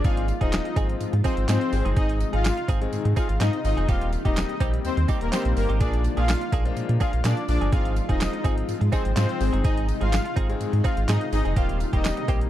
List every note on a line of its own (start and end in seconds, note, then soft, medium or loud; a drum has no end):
0.00 1.69 F3 medium
0.00 3.85 G#3 medium
0.00 1.69 F4 medium
0.04 0.32 G#1 loud
0.04 3.85 C3 medium
0.04 0.31 F3 medium
0.04 0.31 G#3 medium
0.04 0.27 C4 medium
0.04 0.31 C4 medium
0.04 5.76 D#4 medium
0.04 0.31 D#4 medium
0.04 0.27 D#4 medium
0.04 0.31 F4 medium
0.04 0.14 F4 medium
0.04 0.27 G#4 medium
0.04 0.14 F5 loud
0.04 kick loud
0.04 closed hi-hat medium
0.04 tambourine soft
0.17 closed hi-hat medium
0.28 muted clean electric guitar stroke soft
0.28 closed hi-hat medium
0.28 tambourine soft
0.41 0.59 D#1 medium
0.41 0.67 F3 medium
0.41 0.67 G#3 medium
0.41 0.67 C4 medium
0.41 0.55 C4 medium
0.41 0.55 D#4 medium
0.41 0.67 D#4 medium
0.41 0.75 D#4 medium
0.41 0.67 F4 medium
0.41 0.55 G#4 medium
0.41 0.74 D#5 medium
0.41 kick medium
0.41 closed hi-hat medium
0.53 snare loud
0.53 clap loud
0.53 closed hi-hat loud
0.53 tambourine loud
0.65 muted clean electric guitar stroke soft
0.65 closed hi-hat medium
0.76 0.94 G#1 medium
0.76 1.12 F3 medium
0.76 1.12 G#3 medium
0.76 0.95 C4 medium
0.76 1.12 C4 medium
0.76 1.12 D#4 medium
0.76 0.89 D#4 medium
0.76 1.12 F4 medium
0.76 0.88 G#4 loud
0.76 kick medium
0.76 closed hi-hat medium
0.76 tambourine soft
0.89 muted clean electric guitar stroke soft
0.89 closed hi-hat soft
1.00 1.06 G#2 soft
1.00 closed hi-hat medium
1.00 tambourine soft
1.13 1.22 G#2 loud
1.13 muted clean electric guitar stroke soft
1.13 closed hi-hat medium
1.24 1.42 F3 medium
1.24 1.42 G#3 medium
1.24 1.43 C4 medium
1.24 1.42 C4 medium
1.24 1.34 C4 medium
1.24 1.42 D#4 medium
1.24 1.37 D#4 medium
1.24 1.43 F4 loud
1.24 1.36 G#4 loud
1.24 1.34 C5 medium
1.24 kick medium
1.24 closed hi-hat medium
1.24 tambourine medium
1.37 1.46 G#1 medium
1.37 muted clean electric guitar stroke medium
1.37 closed hi-hat medium
1.48 1.58 G#2 loud
1.48 1.72 F3 medium
1.48 1.71 G#3 medium
1.48 1.67 C4 medium
1.48 1.71 C4 medium
1.48 1.83 C4 medium
1.48 1.71 D#4 medium
1.48 1.61 D#4 medium
1.48 1.73 F4 loud
1.48 1.60 G#4 medium
1.48 1.83 C5 medium
1.48 snare medium
1.48 clap loud
1.48 closed hi-hat loud
1.48 tambourine loud
1.61 muted clean electric guitar stroke soft
1.61 closed hi-hat medium
1.72 1.82 G#1 loud
1.72 2.50 D#3 medium
1.72 5.77 D#3 medium
1.72 2.50 G#3 medium
1.72 2.50 C4 medium
1.72 2.50 D#4 medium
1.72 3.86 G#4 medium
1.72 2.50 G#4 medium
1.72 muted clean electric guitar stroke medium
1.72 open hi-hat medium
1.72 tambourine medium
1.85 1.94 G1 loud
1.85 1.95 C4 medium
1.85 1.96 D#4 medium
1.85 1.96 G#4 medium
1.85 closed hi-hat medium
1.96 2.24 G#1 loud
1.96 2.19 C4 medium
1.96 2.19 D#4 medium
1.96 2.06 D#4 medium
1.96 2.19 G#4 loud
1.96 2.06 D#5 loud
1.96 kick loud
1.96 closed hi-hat medium
2.09 closed hi-hat medium
2.20 muted clean electric guitar stroke soft
2.20 closed hi-hat medium
2.20 tambourine soft
2.33 2.51 G#1 medium
2.33 2.47 C4 medium
2.33 2.47 D#4 medium
2.33 2.67 F4 medium
2.33 2.47 G#4 medium
2.33 2.66 F5 medium
2.33 closed hi-hat medium
2.44 snare loud
2.44 clap loud
2.44 closed hi-hat loud
2.44 tambourine medium
2.57 muted clean electric guitar stroke medium
2.57 closed hi-hat medium
2.68 2.86 G#1 medium
2.68 2.87 C4 medium
2.68 2.81 D#4 medium
2.68 2.80 G#4 medium
2.68 kick loud
2.68 closed hi-hat medium
2.68 tambourine soft
2.81 3.42 D#3 medium
2.81 3.42 G#3 medium
2.81 3.42 C4 medium
2.81 3.42 D#4 medium
2.81 3.42 G#4 loud
2.81 muted clean electric guitar stroke soft
2.81 closed hi-hat soft
2.92 2.98 G#2 medium
2.92 closed hi-hat medium
2.92 tambourine medium
3.05 3.14 G#2 loud
3.05 muted clean electric guitar stroke medium
3.05 closed hi-hat medium
3.16 3.35 C4 medium
3.16 3.29 D#4 medium
3.16 3.26 F4 medium
3.16 3.28 G#4 loud
3.16 3.26 F5 medium
3.16 kick medium
3.16 closed hi-hat medium
3.16 tambourine medium
3.29 3.38 G#1 medium
3.29 muted clean electric guitar stroke soft
3.29 closed hi-hat medium
3.40 3.50 G#2 loud
3.40 3.59 C4 loud
3.40 3.53 D#4 medium
3.40 3.50 D#4 medium
3.40 3.52 G#4 loud
3.40 3.50 D#5 medium
3.40 snare loud
3.40 clap loud
3.40 closed hi-hat loud
3.40 tambourine loud
3.53 muted clean electric guitar stroke soft
3.53 closed hi-hat medium
3.64 3.74 G#1 loud
3.64 3.82 D#3 medium
3.64 3.82 G#3 medium
3.64 3.82 C4 medium
3.64 3.82 D#4 medium
3.64 3.74 D#4 medium
3.64 3.83 F4 medium
3.64 3.74 D#5 medium
3.64 muted clean electric guitar stroke soft
3.64 open hi-hat medium
3.64 tambourine medium
3.77 3.86 F1 medium
3.77 3.87 C4 medium
3.77 3.88 D#4 medium
3.77 3.89 G#4 medium
3.77 closed hi-hat medium
3.88 4.16 D#1 loud
3.88 5.79 C3 medium
3.88 4.15 G3 medium
3.88 5.79 G3 medium
3.88 4.15 A#3 medium
3.88 7.69 A#3 medium
3.88 4.11 C4 medium
3.88 4.15 C4 medium
3.88 4.15 D#4 medium
3.88 4.11 D#4 medium
3.88 3.98 F4 medium
3.88 4.15 G4 medium
3.88 4.11 G4 loud
3.88 3.98 F5 loud
3.88 kick loud
3.88 closed hi-hat medium
3.88 tambourine soft
4.01 closed hi-hat medium
4.13 closed hi-hat medium
4.13 tambourine soft
4.25 4.43 D#1 loud
4.25 4.51 G3 medium
4.25 4.51 A#3 medium
4.25 4.51 C4 medium
4.25 4.39 C4 medium
4.25 4.51 D#4 medium
4.25 4.39 D#4 medium
4.25 4.59 D#4 medium
4.25 4.39 G4 medium
4.25 4.51 G4 medium
4.25 4.58 D#5 medium
4.25 kick loud
4.25 closed hi-hat medium
4.37 snare loud
4.37 clap loud
4.37 closed hi-hat loud
4.37 tambourine loud
4.49 muted clean electric guitar stroke medium
4.49 closed hi-hat medium
4.60 4.78 A#1 medium
4.60 4.96 G3 medium
4.60 4.96 A#3 medium
4.60 4.79 C4 medium
4.60 4.96 C4 medium
4.60 4.96 D#4 medium
4.60 4.73 D#4 medium
4.60 4.96 G4 medium
4.60 4.72 G4 medium
4.60 kick medium
4.60 closed hi-hat medium
4.60 tambourine soft
4.73 muted clean electric guitar stroke medium
4.73 closed hi-hat soft
4.84 4.90 D#2 medium
4.84 4.94 C4 medium
4.84 4.94 C5 medium
4.84 closed hi-hat medium
4.84 tambourine soft
4.97 5.06 D#2 loud
4.97 muted clean electric guitar stroke soft
4.97 closed hi-hat medium
5.08 5.26 G3 medium
5.08 5.26 A#3 medium
5.08 5.27 C4 medium
5.08 5.26 C4 medium
5.08 5.26 D#4 medium
5.08 5.21 D#4 medium
5.08 5.26 G4 loud
5.08 5.20 G4 medium
5.08 kick medium
5.08 closed hi-hat medium
5.08 tambourine medium
5.21 5.30 D#1 medium
5.21 5.30 A#3 medium
5.21 5.29 A#4 medium
5.21 muted clean electric guitar stroke medium
5.21 closed hi-hat medium
5.32 5.68 G3 medium
5.32 5.68 A#3 medium
5.32 5.51 C4 medium
5.32 5.68 C4 medium
5.32 5.42 C4 medium
5.32 5.68 D#4 medium
5.32 5.45 D#4 medium
5.32 5.68 G4 loud
5.32 5.44 G4 loud
5.32 5.42 C5 medium
5.32 snare loud
5.32 clap loud
5.32 closed hi-hat loud
5.32 tambourine loud
5.45 5.54 A#1 medium
5.45 muted clean electric guitar stroke soft
5.45 closed hi-hat medium
5.56 5.66 G1 loud
5.56 5.66 A#3 medium
5.56 5.66 A#4 medium
5.56 muted clean electric guitar stroke soft
5.56 open hi-hat medium
5.56 tambourine medium
5.69 5.82 G#1 medium
5.69 5.80 C4 medium
5.69 5.80 D#4 medium
5.69 5.81 G4 medium
5.69 closed hi-hat medium
5.80 6.08 A#1 loud
5.80 7.71 D3 medium
5.80 6.42 F3 medium
5.80 9.37 F3 medium
5.80 6.42 G#3 medium
5.80 11.53 G#3 medium
5.80 6.03 A#3 medium
5.80 6.42 A#3 medium
5.80 6.42 D4 medium
5.80 6.03 D4 medium
5.80 5.90 D4 medium
5.80 9.37 F4 medium
5.80 6.42 F4 medium
5.80 6.03 G#4 medium
5.80 5.90 D5 loud
5.80 kick loud
5.80 closed hi-hat medium
5.80 tambourine soft
5.93 closed hi-hat medium
6.04 muted clean electric guitar stroke soft
6.04 closed hi-hat medium
6.04 tambourine soft
6.17 6.35 A#1 medium
6.17 6.31 A#3 medium
6.17 6.31 D4 medium
6.17 6.51 F4 medium
6.17 6.31 G#4 medium
6.17 6.50 F5 medium
6.17 closed hi-hat medium
6.28 snare loud
6.28 clap loud
6.28 closed hi-hat loud
6.28 tambourine medium
6.41 muted clean electric guitar stroke soft
6.41 closed hi-hat medium
6.52 6.70 A#1 medium
6.52 6.71 A#3 medium
6.52 6.65 D4 loud
6.52 6.64 G#4 loud
6.52 kick medium
6.52 closed hi-hat medium
6.52 tambourine soft
6.65 7.26 F3 medium
6.65 7.26 G#3 medium
6.65 7.26 A#3 medium
6.65 7.26 D4 medium
6.65 7.26 F4 loud
6.65 muted clean electric guitar stroke soft
6.65 closed hi-hat soft
6.76 6.82 A#2 medium
6.76 closed hi-hat medium
6.76 tambourine medium
6.89 6.98 A#2 loud
6.89 muted clean electric guitar stroke soft
6.89 closed hi-hat medium
7.00 7.19 A#3 loud
7.00 7.13 D4 loud
7.00 7.10 F4 medium
7.00 7.12 G#4 loud
7.00 7.10 F5 medium
7.00 kick medium
7.00 closed hi-hat medium
7.00 tambourine medium
7.13 7.22 A#1 medium
7.13 muted clean electric guitar stroke soft
7.13 closed hi-hat medium
7.24 7.34 A#2 loud
7.24 7.43 A#3 medium
7.24 7.37 D4 loud
7.24 7.34 D4 medium
7.24 7.36 G#4 loud
7.24 7.34 D5 medium
7.24 snare medium
7.24 clap loud
7.24 closed hi-hat loud
7.24 tambourine loud
7.37 muted clean electric guitar stroke soft
7.37 closed hi-hat medium
7.48 7.58 A#1 loud
7.48 7.66 F3 medium
7.48 7.66 G#3 medium
7.48 7.66 A#3 medium
7.48 7.67 D4 medium
7.48 7.58 D4 medium
7.48 7.67 F4 medium
7.48 7.58 D5 medium
7.48 muted clean electric guitar stroke soft
7.48 open hi-hat medium
7.48 tambourine medium
7.61 7.70 G1 medium
7.61 7.72 A#3 soft
7.61 7.72 D4 medium
7.61 7.72 G#4 medium
7.61 closed hi-hat medium
7.72 8.00 G#1 loud
7.72 12.50 C3 medium
7.72 7.99 F3 medium
7.72 7.99 G#3 medium
7.72 7.95 C4 medium
7.72 7.99 C4 medium
7.72 12.50 D#4 medium
7.72 7.99 D#4 medium
7.72 7.95 D#4 medium
7.72 7.99 F4 medium
7.72 7.82 F4 medium
7.72 7.95 G#4 medium
7.72 7.82 F5 loud
7.72 kick loud
7.72 closed hi-hat medium
7.72 tambourine soft
7.85 closed hi-hat medium
7.96 muted clean electric guitar stroke soft
7.96 closed hi-hat medium
7.96 tambourine soft
8.09 8.27 D#1 medium
8.09 8.35 F3 medium
8.09 8.35 G#3 medium
8.09 8.35 C4 medium
8.09 8.23 C4 medium
8.09 8.35 D#4 medium
8.09 8.23 D#4 medium
8.09 8.43 D#4 medium
8.09 8.35 F4 medium
8.09 8.23 G#4 medium
8.09 8.43 D#5 medium
8.09 kick medium
8.09 closed hi-hat medium
8.20 snare loud
8.20 clap loud
8.20 closed hi-hat loud
8.20 tambourine medium
8.33 muted clean electric guitar stroke medium
8.33 closed hi-hat medium
8.44 8.62 G#1 medium
8.44 8.80 F3 medium
8.44 8.80 G#3 medium
8.44 8.63 C4 medium
8.44 8.80 C4 medium
8.44 8.80 D#4 medium
8.44 8.56 D#4 medium
8.44 8.80 F4 medium
8.44 8.56 G#4 medium
8.44 kick medium
8.44 closed hi-hat medium
8.44 tambourine soft
8.57 muted clean electric guitar stroke medium
8.57 closed hi-hat soft
8.69 8.74 G#2 medium
8.69 closed hi-hat medium
8.69 tambourine medium
8.81 8.90 G#2 loud
8.81 muted clean electric guitar stroke soft
8.81 closed hi-hat medium
8.92 9.10 F3 medium
8.92 9.10 G#3 medium
8.92 9.11 C4 medium
8.92 9.10 C4 medium
8.92 9.02 C4 medium
8.92 9.10 D#4 medium
8.92 9.04 D#4 loud
8.92 9.11 G#4 medium
8.92 9.04 G#4 loud
8.92 9.02 C5 medium
8.92 kick medium
8.92 closed hi-hat medium
8.92 tambourine medium
9.05 9.14 G#1 medium
9.05 muted clean electric guitar stroke soft
9.05 closed hi-hat medium
9.16 9.26 G#2 loud
9.16 9.40 F3 medium
9.16 9.39 G#3 medium
9.16 9.35 C4 medium
9.16 9.39 C4 medium
9.16 9.51 C4 medium
9.16 9.29 D#4 medium
9.16 9.39 D#4 medium
9.16 9.41 F4 loud
9.16 9.28 G#4 loud
9.16 9.51 C5 medium
9.16 snare loud
9.16 clap loud
9.16 closed hi-hat loud
9.16 tambourine medium
9.29 muted clean electric guitar stroke medium
9.29 closed hi-hat medium
9.40 9.50 G#1 loud
9.40 10.17 D#3 medium
9.40 11.54 D#3 medium
9.40 10.17 G#3 medium
9.40 10.18 C4 medium
9.40 10.18 D#4 medium
9.40 11.54 G#4 medium
9.40 10.18 G#4 medium
9.40 muted clean electric guitar stroke soft
9.40 open hi-hat medium
9.40 tambourine medium
9.53 9.62 G1 loud
9.53 9.63 C4 medium
9.53 9.63 D#4 medium
9.53 9.64 G#4 medium
9.53 closed hi-hat medium
9.64 9.92 G#1 loud
9.64 9.86 C4 loud
9.64 9.87 D#4 medium
9.64 9.74 D#4 medium
9.64 9.87 G#4 loud
9.64 9.74 D#5 loud
9.64 kick loud
9.64 closed hi-hat medium
9.64 tambourine soft
9.77 closed hi-hat medium
9.88 muted clean electric guitar stroke soft
9.88 closed hi-hat medium
9.88 tambourine soft
10.01 10.19 G#1 medium
10.01 10.15 C4 medium
10.01 10.15 D#4 medium
10.01 10.35 F4 medium
10.01 10.15 G#4 medium
10.01 10.34 F5 medium
10.01 closed hi-hat medium
10.13 snare loud
10.13 clap loud
10.13 closed hi-hat loud
10.13 tambourine loud
10.25 muted clean electric guitar stroke medium
10.25 closed hi-hat medium
10.36 10.54 G#1 medium
10.36 10.55 C4 medium
10.36 10.48 D#4 medium
10.36 10.48 G#4 medium
10.36 kick medium
10.36 closed hi-hat medium
10.49 11.10 D#3 medium
10.49 11.10 G#3 medium
10.49 11.10 C4 medium
10.49 11.10 D#4 medium
10.49 11.10 G#4 loud
10.49 muted clean electric guitar stroke soft
10.49 closed hi-hat soft
10.60 10.66 G#2 medium
10.60 closed hi-hat medium
10.60 tambourine medium
10.73 10.82 G#2 loud
10.73 muted clean electric guitar stroke soft
10.73 closed hi-hat medium
10.84 11.03 C4 medium
10.84 10.97 D#4 medium
10.84 10.94 F4 medium
10.84 10.96 G#4 loud
10.84 10.94 F5 medium
10.84 kick medium
10.84 closed hi-hat medium
10.84 tambourine medium
10.97 11.06 G#1 loud
10.97 muted clean electric guitar stroke medium
10.97 closed hi-hat medium
11.08 11.18 G#2 loud
11.08 11.27 C4 medium
11.08 11.21 D#4 medium
11.08 11.18 D#4 medium
11.08 11.20 G#4 loud
11.08 11.18 D#5 medium
11.08 snare loud
11.08 clap loud
11.08 closed hi-hat loud
11.08 tambourine loud
11.21 muted clean electric guitar stroke medium
11.21 closed hi-hat medium
11.32 11.42 G#1 loud
11.32 11.50 D#3 medium
11.32 11.50 G#3 medium
11.32 11.50 C4 medium
11.32 11.50 D#4 medium
11.32 11.42 D#4 medium
11.32 11.50 G#4 medium
11.32 11.42 D#5 medium
11.32 muted clean electric guitar stroke soft
11.32 open hi-hat medium
11.32 tambourine medium
11.45 11.54 F1 medium
11.45 11.56 C4 medium
11.45 11.56 D#4 medium
11.45 11.57 G#4 medium
11.45 closed hi-hat medium
11.56 11.84 D#1 loud
11.56 11.83 G3 medium
11.56 12.50 G3 medium
11.56 11.78 A#3 medium
11.56 11.83 A#3 medium
11.56 12.50 A#3 medium
11.56 11.83 C4 medium
11.56 11.79 C4 medium
11.56 11.83 D#4 medium
11.56 11.66 F4 medium
11.56 12.50 G4 medium
11.56 11.83 G4 medium
11.56 11.79 G4 medium
11.56 11.66 F5 loud
11.56 kick loud
11.56 closed hi-hat medium
11.56 tambourine soft
11.69 closed hi-hat medium
11.80 muted clean electric guitar stroke soft
11.80 closed hi-hat medium
11.80 tambourine soft
11.93 12.11 D#1 medium
11.93 12.19 G3 medium
11.93 12.19 A#3 medium
11.93 12.07 A#3 medium
11.93 12.19 C4 medium
11.93 12.07 C4 medium
11.93 12.19 D#4 medium
11.93 12.27 D#4 medium
11.93 12.07 G4 medium
11.93 12.20 G4 loud
11.93 12.26 D#5 medium
11.93 kick medium
11.93 closed hi-hat medium
12.05 snare loud
12.05 clap loud
12.05 closed hi-hat loud
12.05 tambourine loud
12.17 muted clean electric guitar stroke medium
12.17 closed hi-hat medium
12.28 12.46 A#1 loud
12.28 12.50 G3 medium
12.28 12.47 A#3 medium
12.28 12.50 A#3 medium
12.28 12.50 C4 medium
12.28 12.41 C4 medium
12.28 12.50 D#4 medium
12.28 12.50 G4 medium
12.28 12.40 G4 loud
12.28 kick medium
12.28 closed hi-hat medium
12.28 tambourine soft
12.41 muted clean electric guitar stroke medium
12.41 closed hi-hat soft